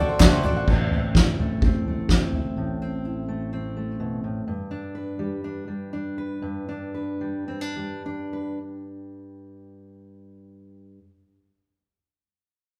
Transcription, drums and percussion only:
0.20 kick, snare, clap, floor tom
0.44 floor tom
0.68 kick, floor tom, crash
0.91 floor tom
1.15 kick, snare, floor tom
1.39 floor tom
1.62 kick, floor tom
1.86 floor tom
2.09 kick, snare, floor tom
2.32 floor tom

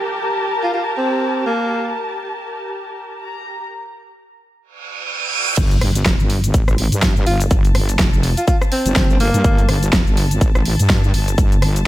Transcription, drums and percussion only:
5.57 kick, closed hi-hat, crash, shaker
5.71 closed hi-hat, shaker
5.81 cross-stick, open hi-hat
5.95 closed hi-hat, shaker
6.06 kick, snare, closed hi-hat, shaker
6.20 shaker
6.30 open hi-hat
6.44 closed hi-hat, shaker
6.54 kick, closed hi-hat, shaker
6.68 cross-stick, shaker
6.78 open hi-hat
6.92 closed hi-hat, shaker
7.02 kick, snare, closed hi-hat, shaker
7.16 shaker
7.27 open hi-hat
7.41 closed hi-hat, shaker
7.51 kick, closed hi-hat, shaker
7.65 closed hi-hat, shaker
7.75 cross-stick, open hi-hat
7.89 closed hi-hat, shaker
7.99 kick, snare, closed hi-hat, shaker
8.13 shaker
8.23 open hi-hat
8.37 closed hi-hat, shaker
8.48 kick, closed hi-hat, shaker
8.62 cross-stick, shaker
8.72 open hi-hat
8.86 closed hi-hat, shaker
8.96 kick, snare, closed hi-hat, shaker
9.10 shaker
9.20 open hi-hat
9.34 closed hi-hat, shaker
9.44 kick, closed hi-hat, shaker
9.58 closed hi-hat, shaker
9.69 cross-stick, open hi-hat
9.83 closed hi-hat, shaker
9.93 kick, snare, closed hi-hat, shaker
10.07 shaker
10.17 open hi-hat
10.31 closed hi-hat, shaker
10.41 kick, closed hi-hat, shaker
10.55 cross-stick, shaker
10.65 open hi-hat
10.79 closed hi-hat, shaker
10.90 kick, snare, closed hi-hat, shaker
11.04 shaker
11.14 open hi-hat
11.28 closed hi-hat, shaker
11.38 kick, closed hi-hat, shaker
11.52 closed hi-hat, shaker
11.62 cross-stick, open hi-hat
11.76 closed hi-hat, shaker

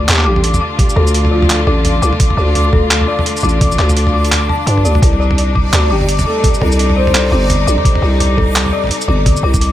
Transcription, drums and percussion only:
0.08 clap, closed hi-hat, mid tom
0.11 clap
0.13 clap
0.16 clap
0.19 clap
0.21 clap
0.22 clap
0.24 clap
0.36 mid tom
0.44 closed hi-hat
0.54 mid tom, shaker
0.79 kick, closed hi-hat, mid tom
0.89 shaker
0.97 mid tom
1.07 shaker
1.14 closed hi-hat
1.25 mid tom
1.42 mid tom
1.50 clap, closed hi-hat
1.67 mid tom
1.85 closed hi-hat, mid tom
2.02 shaker
2.13 mid tom
2.20 kick, closed hi-hat
2.30 mid tom
2.55 closed hi-hat, mid tom
2.73 kick, mid tom
2.91 clap, closed hi-hat
3.01 mid tom
3.19 mid tom
3.26 closed hi-hat
3.36 shaker
3.40 mid tom, shaker
3.49 shaker
3.61 kick, closed hi-hat, mid tom
3.72 shaker
3.79 clap
3.89 mid tom, shaker
3.97 closed hi-hat
4.07 mid tom
4.25 closed hi-hat
4.32 clap, closed hi-hat, mid tom
4.49 mid tom
4.67 closed hi-hat
4.78 mid tom
4.85 shaker
4.95 mid tom
5.02 kick, closed hi-hat
5.13 mid tom
5.31 mid tom
5.38 closed hi-hat
5.55 kick, mid tom
5.73 clap, closed hi-hat, mid tom
6.01 mid tom
6.09 closed hi-hat
6.19 mid tom, shaker
6.44 kick, closed hi-hat, mid tom
6.54 shaker
6.62 mid tom
6.72 shaker
6.79 closed hi-hat
6.90 mid tom
7.07 mid tom
7.15 clap, closed hi-hat
7.32 mid tom
7.50 closed hi-hat, mid tom
7.68 shaker
7.78 mid tom
7.85 kick, closed hi-hat
7.95 mid tom
8.20 closed hi-hat, mid tom
8.38 kick, mid tom
8.56 clap, closed hi-hat
8.66 mid tom
8.84 mid tom
8.85 mid tom
8.87 mid tom
8.89 closed hi-hat, mid tom
9.01 shaker
9.09 mid tom
9.26 kick, closed hi-hat, mid tom
9.36 shaker
9.54 kick, mid tom, shaker
9.61 closed hi-hat

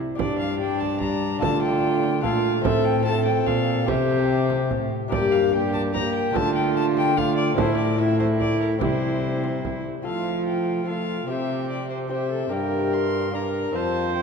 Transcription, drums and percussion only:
0.19 frame drum
0.81 frame drum
1.01 frame drum
1.42 frame drum
2.04 frame drum
2.24 frame drum
2.65 frame drum
3.26 frame drum
3.47 frame drum
3.88 frame drum
4.50 frame drum
4.71 frame drum
5.12 frame drum
5.74 frame drum
5.95 frame drum
6.36 frame drum
6.97 frame drum
7.18 frame drum
7.58 frame drum
8.20 frame drum
8.40 frame drum
8.81 frame drum
9.44 frame drum
9.65 frame drum

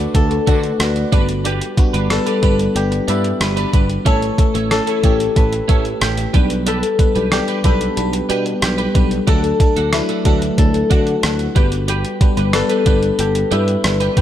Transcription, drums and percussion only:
0.15 kick, closed hi-hat
0.31 closed hi-hat
0.47 kick, closed hi-hat
0.63 closed hi-hat
0.80 cross-stick, closed hi-hat
0.96 closed hi-hat
1.12 kick, closed hi-hat
1.29 closed hi-hat
1.45 closed hi-hat
1.61 closed hi-hat
1.77 kick, closed hi-hat
1.94 closed hi-hat
2.10 cross-stick, closed hi-hat
2.27 closed hi-hat
2.43 kick, closed hi-hat
2.59 closed hi-hat
2.76 closed hi-hat
2.92 closed hi-hat
3.08 closed hi-hat
3.24 closed hi-hat
3.41 cross-stick, closed hi-hat
3.57 closed hi-hat
3.73 kick, closed hi-hat
3.90 closed hi-hat
4.06 kick, closed hi-hat
4.22 closed hi-hat
4.38 kick, closed hi-hat
4.55 closed hi-hat
4.71 cross-stick, closed hi-hat
4.87 closed hi-hat
5.04 kick, closed hi-hat
5.20 closed hi-hat
5.36 kick, closed hi-hat
5.53 closed hi-hat
5.69 kick, closed hi-hat
5.85 closed hi-hat
6.01 cross-stick, closed hi-hat
6.18 closed hi-hat
6.34 kick, closed hi-hat
6.50 closed hi-hat
6.67 closed hi-hat
6.83 closed hi-hat
6.99 kick, closed hi-hat
7.16 closed hi-hat
7.32 cross-stick, closed hi-hat
7.48 closed hi-hat
7.64 kick, closed hi-hat
7.81 closed hi-hat
7.97 closed hi-hat
8.13 closed hi-hat
8.30 closed hi-hat
8.46 closed hi-hat
8.62 cross-stick, closed hi-hat
8.78 closed hi-hat
8.95 kick, closed hi-hat
9.11 closed hi-hat
9.28 kick, closed hi-hat
9.44 closed hi-hat
9.60 kick, closed hi-hat
9.77 closed hi-hat
9.93 cross-stick, closed hi-hat
10.09 closed hi-hat
10.25 kick, closed hi-hat
10.42 closed hi-hat
10.58 kick, closed hi-hat
10.74 closed hi-hat
10.91 kick, closed hi-hat
11.07 closed hi-hat
11.23 cross-stick, closed hi-hat
11.39 closed hi-hat
11.56 kick, closed hi-hat
11.72 closed hi-hat
11.88 closed hi-hat
12.05 closed hi-hat
12.21 kick, closed hi-hat
12.37 closed hi-hat
12.53 cross-stick, closed hi-hat
12.70 closed hi-hat
12.86 kick, closed hi-hat
13.03 closed hi-hat
13.19 closed hi-hat
13.35 closed hi-hat
13.52 closed hi-hat
13.68 closed hi-hat
13.84 cross-stick, closed hi-hat
14.00 closed hi-hat
14.17 kick, closed hi-hat

